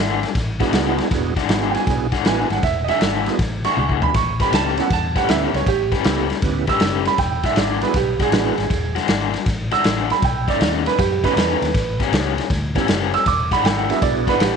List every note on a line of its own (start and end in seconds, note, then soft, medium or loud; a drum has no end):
0.00 0.23 G#1 medium
0.00 0.26 E3 medium
0.00 0.27 G#3 medium
0.00 0.27 D4 medium
0.00 0.27 F#4 medium
0.00 0.22 E5 medium
0.23 snare soft
0.23 ride medium
0.35 0.61 A1 medium
0.35 kick loud
0.35 snare soft
0.35 ride medium
0.60 0.72 E3 medium
0.60 0.72 G#3 medium
0.60 1.08 B3 medium
0.60 1.09 D4 medium
0.60 0.73 D4 medium
0.60 1.09 E4 medium
0.60 0.73 F#4 medium
0.60 1.09 F#4 medium
0.60 1.09 G#4 medium
0.60 kick medium
0.60 snare soft
0.60 ride medium
0.73 0.99 C#2 medium
0.73 1.02 E3 medium
0.73 1.03 G#3 medium
0.73 1.03 D4 medium
0.73 1.03 F#4 medium
0.73 snare loud
0.73 ride medium
0.98 snare soft
0.98 ride medium
1.11 1.37 E1 medium
1.11 1.34 B3 medium
1.11 1.34 D4 medium
1.11 1.34 E4 medium
1.11 1.34 F#4 medium
1.11 1.34 G#4 medium
1.11 kick loud
1.11 snare soft
1.11 ride medium
1.36 1.49 E3 medium
1.36 1.49 G#3 medium
1.36 1.49 D4 medium
1.36 1.49 F#4 medium
1.36 kick medium
1.36 snare soft
1.36 ride medium
1.49 1.75 G#1 medium
1.49 1.79 E3 medium
1.49 1.79 G#3 medium
1.49 2.07 B3 medium
1.49 2.07 D4 medium
1.49 1.79 D4 medium
1.49 2.08 E4 medium
1.49 2.08 F#4 medium
1.49 1.79 F#4 medium
1.49 2.08 G#4 medium
1.49 snare loud
1.49 ride medium
1.71 1.73 G5 medium
1.71 ride medium
1.75 2.24 G#5 medium
1.75 snare soft
1.87 2.13 B1 medium
1.87 kick loud
1.87 snare soft
1.87 ride medium
2.12 2.24 E3 medium
2.12 2.25 G#3 medium
2.12 2.25 D4 medium
2.12 2.25 F#4 medium
2.12 kick medium
2.12 snare soft
2.12 ride medium
2.25 2.43 A1 medium
2.25 2.54 E3 medium
2.25 2.55 G#3 medium
2.25 2.48 B3 medium
2.25 2.48 D4 medium
2.25 2.55 D4 medium
2.25 2.48 E4 medium
2.25 2.48 F#4 medium
2.25 2.55 F#4 medium
2.25 2.48 B4 medium
2.25 2.50 G#5 medium
2.25 snare loud
2.25 ride medium
2.50 2.59 G#1 medium
2.50 2.63 F#5 medium
2.50 snare soft
2.50 ride medium
2.63 2.89 E1 medium
2.63 2.88 E5 medium
2.63 kick loud
2.63 snare soft
2.63 ride medium
2.84 2.86 D#5 medium
2.84 ride medium
2.89 3.00 E3 medium
2.89 3.01 G#3 medium
2.89 3.01 D4 medium
2.89 3.01 F#4 medium
2.89 3.26 E5 loud
2.89 snare soft
3.01 3.27 G#1 medium
3.01 3.30 E3 medium
3.01 3.30 G#3 medium
3.01 3.31 D4 medium
3.01 3.31 F#4 medium
3.01 snare loud
3.01 ride medium
3.26 3.38 B3 medium
3.26 3.38 D4 medium
3.26 3.38 E4 medium
3.26 3.38 F#4 medium
3.26 3.38 G#4 medium
3.26 snare soft
3.26 ride medium
3.39 3.65 A1 medium
3.39 kick loud
3.39 snare soft
3.39 ride medium
3.64 3.76 E3 medium
3.64 3.77 G#3 medium
3.64 3.77 D4 medium
3.64 3.77 F#4 loud
3.64 4.01 C#6 loud
3.64 snare soft
3.64 ride medium
3.77 4.03 C#2 medium
3.77 4.06 E3 medium
3.77 4.07 G#3 medium
3.77 4.07 D4 medium
3.77 4.07 F#4 medium
3.77 high tom medium
3.89 kick medium
4.02 4.15 B5 medium
4.02 floor tom medium
4.14 4.41 A1 medium
4.14 4.40 C#6 medium
4.14 kick loud
4.14 snare soft
4.14 ride medium
4.40 4.51 A3 medium
4.40 4.52 C#4 medium
4.40 4.52 G4 medium
4.40 4.53 B4 medium
4.40 4.53 B5 medium
4.40 kick medium
4.40 snare soft
4.40 ride medium
4.52 4.79 C#2 medium
4.52 4.82 A3 medium
4.52 4.82 C#4 medium
4.52 4.82 G4 medium
4.52 4.83 B4 medium
4.52 4.78 A5 medium
4.52 snare loud
4.52 ride medium
4.77 4.89 B3 medium
4.77 4.90 C#4 medium
4.77 4.90 E4 medium
4.77 4.90 G4 medium
4.77 4.90 A4 medium
4.77 4.92 F#5 medium
4.77 snare soft
4.77 ride medium
4.90 5.17 E2 medium
4.90 5.16 A5 medium
4.90 kick loud
4.90 snare soft
4.90 ride medium
5.16 5.27 A3 medium
5.16 5.28 C#4 medium
5.16 5.28 G4 medium
5.16 5.28 B4 medium
5.16 5.29 F#5 medium
5.16 kick medium
5.16 snare soft
5.16 ride medium
5.29 5.46 D2 medium
5.29 5.58 A3 medium
5.29 5.52 B3 medium
5.29 5.58 C#4 medium
5.29 5.52 C#4 medium
5.29 5.52 E4 soft
5.29 5.58 G4 medium
5.29 5.52 G4 soft
5.29 5.58 B4 medium
5.29 5.52 B4 medium
5.29 5.54 E5 medium
5.29 snare loud
5.29 ride medium
5.54 5.63 C#2 medium
5.54 5.67 C#5 medium
5.54 snare soft
5.54 ride medium
5.66 5.93 A1 medium
5.66 5.92 G4 loud
5.66 kick loud
5.66 snare soft
5.66 ride medium
5.92 6.04 A3 medium
5.92 6.04 C#4 medium
5.92 6.05 G4 medium
5.92 6.05 B4 medium
5.92 kick medium
5.92 snare soft
5.92 ride medium
6.04 6.31 C#2 medium
6.04 6.34 A3 medium
6.04 6.28 B3 medium
6.04 6.28 C#4 medium
6.04 6.34 C#4 medium
6.04 6.28 E4 medium
6.04 6.28 G4 medium
6.04 6.34 G4 medium
6.04 6.28 A4 medium
6.04 6.35 B4 medium
6.04 snare loud
6.04 ride medium
6.30 snare soft
6.30 ride medium
6.42 6.69 D2 medium
6.42 6.66 B3 medium
6.42 6.66 C#4 medium
6.42 6.66 E4 medium
6.42 6.66 G4 medium
6.42 6.66 B4 medium
6.42 kick loud
6.42 snare soft
6.42 ride medium
6.67 6.80 A3 medium
6.67 6.80 C#4 medium
6.67 6.80 G4 medium
6.67 6.81 B4 medium
6.67 7.06 E6 medium
6.67 kick medium
6.67 snare soft
6.67 ride medium
6.80 7.07 F#1 medium
6.80 7.10 A3 medium
6.80 7.10 C#4 medium
6.80 7.10 G4 medium
6.80 7.10 B4 medium
6.80 snare loud
6.80 ride medium
7.05 7.19 B5 medium
7.05 snare soft
7.05 ride medium
7.18 7.45 E1 medium
7.18 7.43 G5 loud
7.18 kick loud
7.18 snare soft
7.18 ride medium
7.43 7.56 E3 medium
7.43 7.56 G#3 medium
7.43 7.56 D4 medium
7.43 7.57 F#4 medium
7.43 7.57 E5 medium
7.43 kick medium
7.43 snare soft
7.43 ride medium
7.56 7.83 G#1 medium
7.56 7.86 E3 medium
7.56 7.86 G#3 medium
7.56 7.86 D4 medium
7.56 7.87 F#4 medium
7.56 7.82 D5 medium
7.56 snare loud
7.56 ride medium
7.81 7.93 B3 medium
7.81 7.93 D4 medium
7.81 7.93 E4 medium
7.81 7.94 F#4 medium
7.81 7.94 G#4 medium
7.81 7.95 B4 medium
7.81 snare soft
7.81 ride medium
7.94 8.20 B1 medium
7.94 8.20 G4 medium
7.94 kick loud
7.94 snare soft
7.94 ride medium
8.20 8.32 E3 medium
8.20 8.32 G#3 medium
8.20 8.33 D4 medium
8.20 8.33 F#4 medium
8.20 8.95 G#4 loud
8.20 kick medium
8.20 snare soft
8.20 ride medium
8.32 8.50 A1 medium
8.32 8.62 E3 medium
8.32 8.62 G#3 medium
8.32 8.55 B3 medium
8.32 8.55 D4 medium
8.32 8.62 D4 medium
8.32 8.55 E4 medium
8.32 8.55 F#4 medium
8.32 8.63 F#4 medium
8.32 8.56 B4 medium
8.32 snare loud
8.32 ride medium
8.58 8.67 G#1 medium
8.58 snare soft
8.58 ride medium
8.70 8.97 E1 medium
8.70 kick loud
8.70 snare soft
8.70 ride medium
8.95 9.07 E3 medium
8.95 9.08 G#3 medium
8.95 9.08 D4 medium
8.95 9.08 F#4 medium
8.95 snare soft
8.95 ride medium
9.08 9.35 G#1 medium
9.08 9.38 E3 medium
9.08 9.38 G#3 medium
9.08 9.38 D4 medium
9.08 9.38 F#4 medium
9.08 snare loud
9.08 ride medium
9.34 snare soft
9.34 ride medium
9.46 9.73 A1 medium
9.46 kick loud
9.46 snare soft
9.46 ride medium
9.71 9.83 E3 medium
9.71 9.84 G#3 medium
9.71 9.84 D4 medium
9.71 9.85 F#4 medium
9.71 10.09 E6 medium
9.71 snare soft
9.71 ride medium
9.84 10.11 A1 medium
9.84 10.14 E3 medium
9.84 10.14 G#3 medium
9.84 10.14 D4 medium
9.84 10.14 F#4 medium
9.84 snare loud
9.84 ride medium
10.10 10.23 B5 medium
10.10 snare soft
10.10 ride medium
10.22 10.49 B1 medium
10.22 10.48 G5 medium
10.22 kick loud
10.22 snare soft
10.22 ride medium
10.48 10.59 B2 medium
10.48 10.60 A3 medium
10.48 10.60 C#4 medium
10.48 10.60 D#4 medium
10.48 10.60 D5 medium
10.48 kick medium
10.48 snare soft
10.48 ride medium
10.60 10.87 D#2 medium
10.60 10.90 B2 medium
10.60 10.90 A3 medium
10.60 10.90 C#4 medium
10.60 10.90 D#4 medium
10.60 10.86 D5 medium
10.60 snare loud
10.60 ride medium
10.86 10.99 B4 medium
10.86 snare soft
10.86 ride medium
10.99 11.25 F#2 medium
10.99 11.23 G4 medium
10.99 kick loud
10.99 snare soft
10.99 ride medium
11.23 11.35 B2 medium
11.23 11.36 A3 medium
11.23 11.35 B3 medium
11.23 11.35 C#4 medium
11.23 11.36 C#4 medium
11.23 11.35 D#4 medium
11.23 11.37 D#4 medium
11.23 11.35 F#4 medium
11.23 11.35 A4 medium
11.23 11.98 B4 loud
11.23 kick medium
11.23 snare soft
11.23 ride medium
11.36 11.54 E2 loud
11.36 11.66 B2 medium
11.36 11.66 A3 medium
11.36 11.66 C#4 medium
11.36 11.66 D#4 medium
11.36 snare loud
11.36 ride medium
11.62 11.71 D#2 medium
11.62 snare soft
11.62 ride medium
11.74 12.01 A1 loud
11.74 kick loud
11.74 snare soft
11.74 ride medium
12.00 12.11 A2 medium
12.00 12.12 G3 medium
12.00 12.12 B3 medium
12.00 12.13 C#4 medium
12.00 kick medium
12.00 snare soft
12.00 ride medium
12.12 12.38 C#2 medium
12.12 12.42 A2 medium
12.12 12.42 G3 medium
12.12 12.42 B3 medium
12.12 12.42 C#4 medium
12.12 snare loud
12.12 ride medium
12.38 snare soft
12.38 ride medium
12.50 12.76 D2 medium
12.50 kick loud
12.50 snare soft
12.50 ride medium
12.75 12.88 A2 medium
12.75 12.88 G3 medium
12.75 12.87 B3 medium
12.75 12.88 B3 medium
12.75 12.87 C#4 medium
12.75 12.88 C#4 medium
12.75 12.87 E4 medium
12.75 12.87 G4 medium
12.75 12.87 A4 medium
12.75 kick medium
12.75 snare soft
12.75 ride medium
12.88 13.15 F#1 medium
12.88 13.18 A2 medium
12.88 13.18 G3 medium
12.88 13.18 B3 medium
12.88 13.18 C#4 medium
12.88 snare loud
12.88 ride medium
13.14 13.26 E6 loud
13.14 snare soft
13.14 ride medium
13.26 13.52 E1 loud
13.26 13.51 D6 loud
13.26 kick loud
13.26 snare soft
13.26 ride medium
13.51 13.63 E3 medium
13.51 13.64 G#3 medium
13.51 13.64 D4 medium
13.51 13.64 F#4 loud
13.51 13.65 B5 loud
13.51 kick medium
13.51 snare soft
13.51 ride medium
13.64 13.90 G#1 medium
13.64 13.93 E3 medium
13.64 13.94 G#3 medium
13.64 13.94 D4 medium
13.64 13.94 F#4 medium
13.64 13.89 G5 medium
13.64 snare loud
13.64 ride medium
13.89 14.38 B3 medium
13.89 14.38 D4 medium
13.89 14.38 E4 medium
13.89 14.38 F#4 medium
13.89 14.38 G#4 medium
13.89 14.02 E5 medium
13.89 snare soft
13.89 ride medium
14.02 14.28 B1 medium
14.02 14.27 D5 loud
14.02 kick loud
14.02 snare soft
14.02 ride medium
14.27 14.40 E3 medium
14.27 14.40 G#3 medium
14.27 14.40 D4 medium
14.27 14.40 F#4 medium
14.27 14.40 B4 loud
14.27 kick medium
14.27 snare soft
14.27 ride medium
14.40 14.56 A1 medium
14.40 14.56 E3 medium
14.40 14.56 G#3 medium
14.40 14.56 D4 medium
14.40 14.56 F#4 medium
14.40 14.56 G4 medium
14.40 snare loud
14.40 ride medium